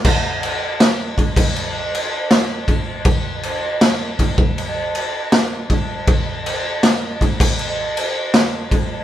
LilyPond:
\new DrumStaff \with { instrumentName = "Drums" } \drummode { \time 4/4 \tempo 4 = 159 <cymc bd>4 cymc4 <cymc sn>4 <cymc bd>8 <cymc bd>8 | cymc4 cymc4 <cymc sn>4 <cymc bd>4 | <cymc bd>4 cymc4 <cymc sn>4 <cymc bd>8 bd8 | cymc4 cymc4 <cymc sn>4 <cymc bd>4 |
<cymc bd>4 cymc4 <cymc sn>4 <cymc bd>8 <cymc bd>8 | cymc4 cymc4 <cymc sn>4 <cymc bd>4 | }